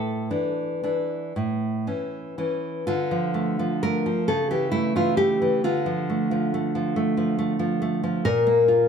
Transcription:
Already playing: A2 A4
0.31 E3 D4
0.83 E3 D4
1.36 A2
1.87 E3 C#4
2.38 E3 C#4
2.87 D3 F4
3.11 F3
3.34 A3
3.59 F3
3.83 A3 A#4
4.06 F3
4.28 C#3 A4
4.51 E3 G4
4.72 A3 E4
4.96 E3 F4
5.17 A3 G4
5.42 E3
5.64 D3 F4
5.86 F3
6.09 A3
6.31 F3
6.54 A3
6.75 F3
6.96 A3
7.17 F3
7.39 A3
7.59 F3
7.82 A3
8.04 F3
8.25 A#2 A#4
8.47 A#3
8.68 F4

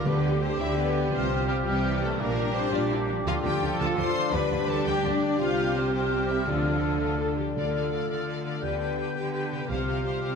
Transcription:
Already playing: D3 D4 D6
0.05 D2 D3 B3 G4 B4
0.24 G3
0.42 C4 C5
0.58 D2 D3 E4 D5 E5
0.76 B3 G4 B4
0.95 D4
1.11 C2 C3 G3 C4 F4 C5 F6
1.30 G3
1.47 G3 G4
1.66 C2 C3 E3 G3 G4 F5
2.02 A3 C4 A4
2.19 A#1 A#2 A#3 D4 G4 A#4 D6
2.38 A#3
2.55 C4 C5
2.71 A#1 A#2 D4 F4 A#4 D5
2.92 E4
3.08 F3 D4
3.25 D2 D3 F3 D4 F4 A4 F5
3.42 D2 D3 A3 G4 G5
3.61 D2 D3 F4
3.79 D2 D3 A4 A5
3.97 D2 D3 C5 C6
4.15 D4
4.31 D2 D3 G3 D4 G4 B4 B5 D6
4.50 D2 D3 B3
4.67 D2 D3 A4 A5
4.85 D2 D3 G4 B4 G5
5.03 D2 D3 D4 D5
5.22 D4
5.39 C2 C3 G3 C4 F4 G4 F5 F6
5.58 C4
5.73 C4 C5
5.77 C4
5.92 G3 C4 G4 C5
6.11 G4
6.29 G3 E4 E5
6.46 D2 D3 F3 A3 D4 F4 A4 D5
6.65 A3
7.02 F4 A4
7.19 F4 A4
7.38 D3 D4 G4
7.43 A3
7.48 F4
7.52 D5
7.56 D2 D3 A3 F4 A4 D5 F5 F6
7.74 A4 D5 F5
7.93 A4 D5 F5
8.11 D3 A4 D5 F5
8.28 A4 D5 F5
8.45 D3 A4 D5 F5
8.50 B3
8.54 G4
8.59 D5
8.63 D2 D3 B3 G4 B4 G5 G6
8.79 G4 B4 G5
8.98 G4 B4 G5
9.16 D3 G4 B4 G5
9.34 G4 B4 G5
9.51 C3 G4 B4 G5
9.56 C4
9.61 G4
9.65 G4 F5
9.70 C2 C3 G3 F4 G4 C5 F5 F6
9.86 G4 C5 F5
10.04 G4 C5 F5
10.23 C3 G4 C5 F5

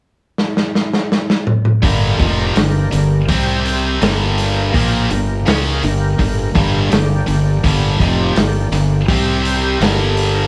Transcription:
0.38 snare
0.57 snare
0.75 snare
0.93 snare
1.12 snare
1.30 snare
1.47 mid tom
1.65 mid tom
1.83 G1 G2 D3 G3 A#3 D4 G4 A#4, kick, open hi-hat
2.19 F1 F2 C3 F3, kick, open hi-hat
2.56 G1 G2 D3, snare, open hi-hat
2.92 G1 G2 D3, open hi-hat
3.27 C2 C3 G3 C4 G4 C5, kick, open hi-hat
3.66 open hi-hat
4.01 G1 G2 D3 G3 A#3 G4 A#4, snare, open hi-hat
4.38 open hi-hat
4.74 A#1 A#2 F3 A#3, kick, open hi-hat
5.10 G1 G2 D3, open hi-hat
5.46 C#2 C#3 G#3 C#4, snare, open hi-hat
5.83 G1 G2 D3, open hi-hat
6.19 G1 G2 D3, kick, open hi-hat
6.55 G1 G2 D3 G3, kick, open hi-hat
6.91 G1 G2 D3 A#3 D4 G4, snare, open hi-hat
7.27 G1 G2 D3, open hi-hat
7.64 G1 G2 D3 G3, kick, open hi-hat
8.00 F1 F2 C3 F3, kick, open hi-hat
8.36 G1 G2 D3, snare, open hi-hat
8.72 G1 G2 D3, open hi-hat
9.07 C2 C3 G3 C4 G4 C5, kick, open hi-hat
9.45 open hi-hat
9.79 G1 G2 D3 G3 A#3 G4 A#4, snare, open hi-hat
10.17 open hi-hat

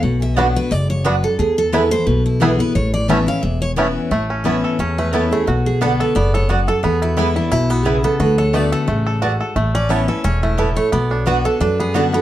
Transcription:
0.03 B1 B2 F#5
0.22 E5
0.36 D3 B3 D4 F#4 C#5 D5 F#5
0.56 B4
0.71 F#1 G#2 D5
0.90 C#5
1.04 F#2 B3 D4 F#4 B4 D5 F#5
1.24 A4
1.39 E2 G#4
1.58 A4
1.72 E3 G#3 B3 E4 B4 G#5
1.91 B3 E4 C5
2.07 B1 B2 B4
2.26 E4
2.40 E3 G#3 B3 E4 G#4 B4 G#5
2.59 B3 E4 B4
2.75 A1 A2 C#5
2.94 D5
3.08 E3 A3 B3 C#4 E4 C#5 E5 A5
3.26 C#4 E4 F5
3.43 E1 E2 E5
3.62 C#5
3.76 E3 A3 B3 C#4 E4 C#5 A5
4.11 A1 A2 A3
4.30 C#4
4.44 E3 B3 C#4 E4 C#5 A5
4.64 A4
4.79 E2 C#4 C#5
4.98 A3 B4
5.13 E3 B3 C#4 E4 A4 C#5 A5
5.31 A3 C#4 E4 G#4
5.47 B1 B2 F#4
5.66 G#4
5.81 D3 B3 D4 F#4 A4 D5 F#5
6.00 A4 B4
6.15 F#1 G#2 B3 D5
6.34 A4 C#5
6.49 F#2 B3 F#4 B4 D5 F#5
6.68 A4
6.83 E2 B3 G#4
7.02 E4 F#4
7.17 E3 G#3 B3 E4 B4 G#5
7.36 B3 D4 E4
7.51 B1 B2 E4
7.70 B3 F#4
7.85 C#3 B3 E4 G#4 B4 G#5
8.04 B3 A4
8.20 D2 D3 F#4 B4
8.38 A4 C#5
8.53 D3 A3 B3 F#4 D5 A5
8.72 A4 F#5
8.88 A1 C#3 A3
9.07 A4
9.22 G#2 B3 F#4 D5 A5
9.41 A4
9.56 A1 A2 A3
9.75 C#4 D5
9.89 E3 B3 C#4 E4 C#5 A5
10.08 C#4 E4 A4 B4
10.24 E1 G#2 C#4 C#5
10.43 A3 E4
10.58 A2 B3 E4 A4 C#5 A5
10.76 A3 C#5
10.92 B1 B2 B3 D5
11.11 D4 C#5
11.26 D3 B3 D4 F#4 B4 D5 F#5
11.45 A4
11.60 F#2 D4 B4
11.80 B3 G#4
11.94 D3 B3 D4 F#4 A4 D5 F#5
12.13 B3 D4 F#4

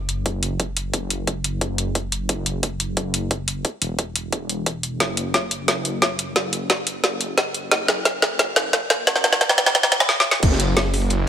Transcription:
Already playing: F#1
0.09 closed hi-hat
0.26 kick, closed hi-hat
0.43 closed hi-hat
0.60 kick, closed hi-hat
0.77 closed hi-hat
0.93 F#1, kick, closed hi-hat
1.10 closed hi-hat
1.27 kick, closed hi-hat
1.44 closed hi-hat
1.61 kick, closed hi-hat
1.78 closed hi-hat
1.95 kick, closed hi-hat
2.12 closed hi-hat
2.29 F#1, kick, closed hi-hat
2.46 closed hi-hat
2.63 kick, closed hi-hat
2.80 closed hi-hat
2.97 kick, closed hi-hat
3.14 closed hi-hat
3.31 kick, closed hi-hat
3.48 closed hi-hat
3.65 kick, closed hi-hat
3.82 E1, closed hi-hat
3.99 kick, closed hi-hat
4.16 closed hi-hat
4.32 kick, closed hi-hat
4.49 closed hi-hat
4.66 kick, closed hi-hat
4.83 closed hi-hat
5.00 F#1, kick, snare, closed hi-hat
5.17 closed hi-hat
5.34 kick, snare, closed hi-hat
5.51 closed hi-hat
5.68 kick, snare, closed hi-hat
5.85 closed hi-hat
6.02 kick, snare, closed hi-hat
6.19 closed hi-hat
6.36 F#1, kick, snare, closed hi-hat
6.53 closed hi-hat
6.70 kick, snare, closed hi-hat
6.87 closed hi-hat
7.04 kick, snare, closed hi-hat
7.21 closed hi-hat
7.38 kick, snare, closed hi-hat
7.54 closed hi-hat
7.71 F#1, kick, snare, closed hi-hat
7.88 snare, closed hi-hat
8.05 kick, snare, closed hi-hat
8.22 snare, closed hi-hat
8.39 kick, snare, closed hi-hat
8.56 snare, closed hi-hat
8.73 kick, snare, closed hi-hat
8.90 snare, closed hi-hat
9.07 F#1, kick, snare, closed hi-hat
9.16 snare
9.24 snare, closed hi-hat
9.33 snare
9.41 F#1, kick, snare, closed hi-hat
9.49 snare
9.58 snare, closed hi-hat
9.66 snare
9.75 kick, snare, closed hi-hat
9.83 snare
9.92 snare, closed hi-hat
10.00 snare
10.09 snare
10.20 snare
10.31 snare
10.43 F#1, kick, closed hi-hat, ride, crash
10.52 snare
10.60 closed hi-hat, ride
10.76 snare, closed hi-hat, ride
10.94 open hi-hat, ride
11.01 ride
11.10 closed hi-hat, ride

